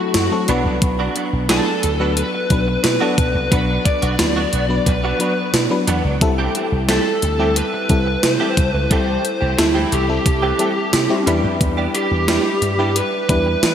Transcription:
Already playing: F#3 A3 C4 D4 E4 F#4 A4
0.14 F#2, muted clean electric guitar stroke, snare, closed hi-hat
0.31 F#3 A3 C4 A4, muted clean electric guitar stroke
0.48 B1 F#3 B3 D4 F#4 B4, closed hi-hat
0.65 C2 F#3 B3 D4 F#4
0.82 B1, muted clean electric guitar stroke, kick, closed hi-hat
0.99 F#3 B3 D4 F#4
1.15 F#3 B3 D4 F#4, closed hi-hat
1.33 B1, muted clean electric guitar stroke
1.49 F#3 B3 D4 F#4 A4 B4, snare, closed hi-hat
1.66 muted clean electric guitar stroke
1.83 D2, muted clean electric guitar stroke, closed hi-hat
2.00 F#3 B3 D4 F#4 B4
2.17 B4, muted clean electric guitar stroke, closed hi-hat
2.34 muted clean electric guitar stroke
2.50 B1 F#3 B3 D4 B4, kick, closed hi-hat
2.67 muted clean electric guitar stroke
2.84 B2 B4, muted clean electric guitar stroke, snare, closed hi-hat
3.01 F#3 B3 D4 F#4 A4
3.17 B1, muted clean electric guitar stroke, kick, closed hi-hat
3.35 C2, muted clean electric guitar stroke
3.51 B1 F#3 B3 D4 F#4 B4, kick, closed hi-hat
3.85 D5, muted clean electric guitar stroke, kick, closed hi-hat
4.02 B1 F#3 B3 D4 F#4, closed hi-hat
4.18 D2 F#3 B3 D4 B4, muted clean electric guitar stroke, snare, closed hi-hat
4.36 F#3 B3 D4 F#4
4.53 B1 F#3 B3 D4 F#4, closed hi-hat
4.69 F#3 B3 D4 B4, muted clean electric guitar stroke
4.86 B1 B4, muted clean electric guitar stroke, kick, closed hi-hat
5.04 F#3 B3 D4 F#4
5.19 F#3 B3 D4 F#4 B4, closed hi-hat
5.38 muted clean electric guitar stroke
5.54 B2, muted clean electric guitar stroke, snare, closed hi-hat
5.70 F#3 B3 D4 B4, muted clean electric guitar stroke
5.87 E2 F#3 B3 D4 F#4, closed hi-hat
6.05 C#2 F#3 B3 D4 F#4
6.21 C2 G3 C4 E4 A4, muted clean electric guitar stroke, kick, closed hi-hat
6.38 E3 A3 C4 G4
6.55 E3 A3 C4 G4, closed hi-hat
6.72 C2, muted clean electric guitar stroke
6.88 E3 G3 A3 C4 E4 G4 A4, snare, closed hi-hat
7.06 muted clean electric guitar stroke
7.22 D2, muted clean electric guitar stroke, closed hi-hat
7.39 E3 G3 A3 C4 E4 G4 A4
7.56 B4, muted clean electric guitar stroke, closed hi-hat
7.73 muted clean electric guitar stroke
7.89 C2 G3 C4 E4 A4, kick, closed hi-hat
8.07 muted clean electric guitar stroke
8.23 C3 C5, muted clean electric guitar stroke, snare, closed hi-hat
8.40 E3 G3 A3 C4 E4 G4 A4
8.57 C2, muted clean electric guitar stroke, kick, closed hi-hat
8.73 C#2 B4, muted clean electric guitar stroke
8.91 C2 E3 G3 A3 C4 E4 G4 A4 C5, kick, closed hi-hat
9.24 muted clean electric guitar stroke, closed hi-hat
9.41 C2 E3 A3 C4 G4
9.58 D2 G3 C4 E4 A4, muted clean electric guitar stroke, snare, closed hi-hat
9.74 E3 A3 C4 G4
9.91 C2 E3 A3 C4 G4, closed hi-hat
10.08 G3 C4 E4 A4, muted clean electric guitar stroke
10.26 C2, muted clean electric guitar stroke, kick, closed hi-hat
10.42 E3 A3 C4 G4
10.59 E3 G3 A3 C4 E4 G4 A4, closed hi-hat
10.76 muted clean electric guitar stroke
10.93 C3, muted clean electric guitar stroke, snare, closed hi-hat
11.09 G3 C4 E4 G4, muted clean electric guitar stroke
11.26 E2 G3 B3 D4 E4 G4 B4, closed hi-hat
11.43 F2 G3 B3 D4 G4
11.60 E2, muted clean electric guitar stroke, kick, closed hi-hat
11.77 G3 B3 D4 G4
11.94 G3 B3 D4 G4, closed hi-hat
12.11 E2, muted clean electric guitar stroke
12.28 G3 B3 D4 E4 G4 B4, snare, closed hi-hat
12.45 muted clean electric guitar stroke
12.62 G2, muted clean electric guitar stroke, closed hi-hat
12.78 G3 B3 D4 E4 G4 B4
12.96 B4, muted clean electric guitar stroke, closed hi-hat
13.13 muted clean electric guitar stroke
13.29 E2 G3 D4 E4 B4, kick, closed hi-hat
13.46 muted clean electric guitar stroke
13.63 E3, muted clean electric guitar stroke, snare, closed hi-hat

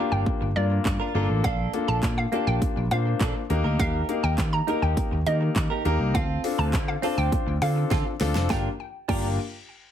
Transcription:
Already playing: A#3 D4 F4 G4
0.00 A#4
0.11 G1 D4 F4 A#4 G5
0.26 kick
0.41 G1, muted clean electric guitar stroke
0.56 G2 A#3 D4 F4 A#4 D5
0.70 muted clean electric guitar stroke
0.85 G2, muted clean electric guitar stroke, kick, clap
1.00 D4 F4 A#4
1.14 G1 A#3 D4 F4 A4 A#4
1.29 A1, muted clean electric guitar stroke
1.44 A#1 A#3 D4 A4 F5, kick, closed hi-hat
1.73 A#3 D4 F4 A4, muted clean electric guitar stroke, closed hi-hat
1.88 A#1 A#3 D4 A4 A5
2.03 A#2, kick, clap, closed hi-hat
2.17 F5, muted clean electric guitar stroke
2.32 A#3 D4 F4 G4 A4, closed hi-hat
2.47 A#1 A#3 D4 A4 G5
2.62 muted clean electric guitar stroke, kick, closed hi-hat
2.76 A#1, muted clean electric guitar stroke
2.91 A#2 A#3 D4 F4 C5 F5, closed hi-hat
3.06 muted clean electric guitar stroke
3.20 A#2 A#3 D4 A4, kick, clap, closed hi-hat
3.35 muted clean electric guitar stroke
3.50 D#2 A#3 D#4 G4 A#4, muted clean electric guitar stroke, closed hi-hat
3.64 D2 D#4 G4 A#4
3.79 D#2 D#4 G4 A#4 F5, kick, closed hi-hat
4.09 A#3 D#4 G4 A#4, muted clean electric guitar stroke, closed hi-hat
4.23 D#2 D#4 G4 A#4 G5
4.38 D#3, muted clean electric guitar stroke, kick, clap, closed hi-hat
4.53 A#5, muted clean electric guitar stroke
4.67 A#3 D#4 G4 A#4, closed hi-hat
4.82 D#2 D#4 G4 A#4 G5
4.97 muted clean electric guitar stroke, kick, closed hi-hat
5.12 D#2, muted clean electric guitar stroke
5.26 D#3 A#3 D#4 G4 A#4 D#5, closed hi-hat
5.41 muted clean electric guitar stroke
5.56 D#3, muted clean electric guitar stroke, kick, clap, closed hi-hat
5.70 D#4 G4 A#4
5.85 D#2 A#3 D#4 G4 A#4, closed hi-hat
6.00 C2, muted clean electric guitar stroke
6.14 D2 C4 F4 A4 F5, kick, closed hi-hat
6.44 C4 D4 F4 A4, open hi-hat
6.58 D2 C4 F4 A4 A5
6.73 D3, muted clean electric guitar stroke, kick, clap, closed hi-hat
6.88 F5, muted clean electric guitar stroke
7.02 C4 D4 F4 A4 C5, open hi-hat
7.17 D2 C4 F4 A4 G5
7.32 muted clean electric guitar stroke, kick, closed hi-hat
7.47 D2, muted clean electric guitar stroke
7.62 D3 C4 D4 F4 A4 F5, open hi-hat
7.76 muted clean electric guitar stroke
7.91 D3 C4 F4 A4, kick, snare, closed hi-hat
8.05 muted clean electric guitar stroke
8.20 D2 C4 D4 F4 A4, muted clean electric guitar stroke, snare, open hi-hat
8.35 F1 C4 F4 A4, snare
8.50 G1 A#3 D4 F4 G4 A#4 G5, kick, snare
9.08 G1 A#3 D4 F4 G4 A#4 G5, kick, crash

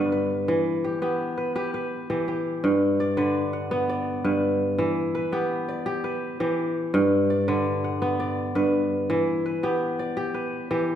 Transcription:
Already playing: G2 D3 B3 B4 D5
0.12 B4
0.48 E3
0.84 G4
1.02 B3 G4
1.38 B4
1.56 G4 B4
1.74 B4
2.10 E3 G4
2.28 G4
2.64 G2
3.00 D5
3.17 D3 B4
3.53 F#5
3.71 B3
3.89 D5
4.24 G2 B4
4.79 E3
5.15 B4
5.32 B3 G4
5.69 D5
5.86 G4
6.04 B4
6.40 E3 G4
6.94 G2
7.30 D5
7.48 D3 B4
7.84 F#5
8.02 B3
8.20 D5
8.55 G2 B4
9.10 E3
9.46 B4
9.63 B3 G4
9.99 D5
10.17 G4
10.34 B4
10.71 E3 G4

